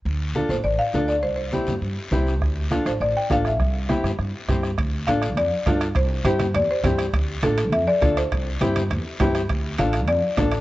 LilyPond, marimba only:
\new Staff \with { instrumentName = "Marimba" } { \time 4/4 \key d \minor \tempo 4 = 204 r4. c''8 d''8 f''4 d''8 | c''8 c''2 r4. | r4. c''8 d''8 g''8 f''8 e''8~ | e''2. r4 |
r4 f''4 d''2 | c''4 c''4 d''8 c''4 r8 | r4 a'4 e''8 d''4 c''8~ | c''2~ c''8 r4. |
r4 f''4 d''2 | }